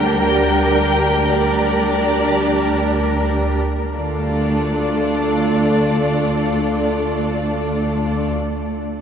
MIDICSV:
0, 0, Header, 1, 6, 480
1, 0, Start_track
1, 0, Key_signature, -1, "minor"
1, 0, Tempo, 1088929
1, 577, Tempo, 1232033
1, 1057, Tempo, 1418440
1, 1537, Time_signature, 4, 2, 24, 8
1, 1537, Tempo, 1293103
1, 3413, End_track
2, 0, Start_track
2, 0, Title_t, "Violin section"
2, 0, Program_c, 0, 48
2, 0, Note_on_c, 0, 79, 61
2, 84, Note_off_c, 0, 79, 0
2, 89, Note_on_c, 0, 79, 53
2, 564, Note_off_c, 0, 79, 0
2, 570, Note_on_c, 0, 74, 54
2, 1297, Note_off_c, 0, 74, 0
2, 1537, Note_on_c, 0, 74, 38
2, 3156, Note_off_c, 0, 74, 0
2, 3413, End_track
3, 0, Start_track
3, 0, Title_t, "Cello section"
3, 0, Program_c, 1, 48
3, 0, Note_on_c, 1, 70, 57
3, 1056, Note_off_c, 1, 70, 0
3, 1060, Note_on_c, 1, 70, 37
3, 1296, Note_off_c, 1, 70, 0
3, 1536, Note_on_c, 1, 38, 34
3, 3155, Note_off_c, 1, 38, 0
3, 3413, End_track
4, 0, Start_track
4, 0, Title_t, "Violin section"
4, 0, Program_c, 2, 48
4, 0, Note_on_c, 2, 67, 47
4, 0, Note_on_c, 2, 70, 46
4, 86, Note_off_c, 2, 67, 0
4, 86, Note_off_c, 2, 70, 0
4, 91, Note_on_c, 2, 67, 45
4, 92, Note_on_c, 2, 70, 45
4, 565, Note_off_c, 2, 67, 0
4, 566, Note_off_c, 2, 70, 0
4, 571, Note_on_c, 2, 70, 40
4, 575, Note_on_c, 2, 67, 41
4, 1406, Note_off_c, 2, 70, 0
4, 1407, Note_off_c, 2, 67, 0
4, 1537, Note_on_c, 2, 65, 30
4, 1537, Note_on_c, 2, 69, 32
4, 3156, Note_off_c, 2, 65, 0
4, 3156, Note_off_c, 2, 69, 0
4, 3413, End_track
5, 0, Start_track
5, 0, Title_t, "Viola section"
5, 0, Program_c, 3, 48
5, 0, Note_on_c, 3, 55, 42
5, 0, Note_on_c, 3, 62, 45
5, 85, Note_off_c, 3, 55, 0
5, 87, Note_off_c, 3, 62, 0
5, 90, Note_on_c, 3, 55, 35
5, 93, Note_on_c, 3, 62, 40
5, 565, Note_off_c, 3, 55, 0
5, 566, Note_off_c, 3, 62, 0
5, 575, Note_on_c, 3, 62, 40
5, 576, Note_on_c, 3, 55, 33
5, 1408, Note_off_c, 3, 55, 0
5, 1408, Note_off_c, 3, 62, 0
5, 1537, Note_on_c, 3, 57, 32
5, 1537, Note_on_c, 3, 62, 32
5, 3156, Note_off_c, 3, 57, 0
5, 3156, Note_off_c, 3, 62, 0
5, 3413, End_track
6, 0, Start_track
6, 0, Title_t, "Double bass section"
6, 0, Program_c, 4, 48
6, 0, Note_on_c, 4, 38, 49
6, 1406, Note_off_c, 4, 38, 0
6, 1538, Note_on_c, 4, 38, 31
6, 3156, Note_off_c, 4, 38, 0
6, 3413, End_track
0, 0, End_of_file